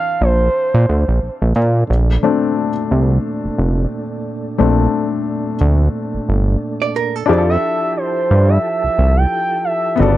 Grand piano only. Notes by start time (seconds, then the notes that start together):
Already playing: E3 C4 D4 A4
2.23 A3 C4 D4
4.58 A3 C4 D4
7.26 D4 E4 G4
7.31 G#4
7.38 A4
9.96 C#3 B3 F#4
10.01 A4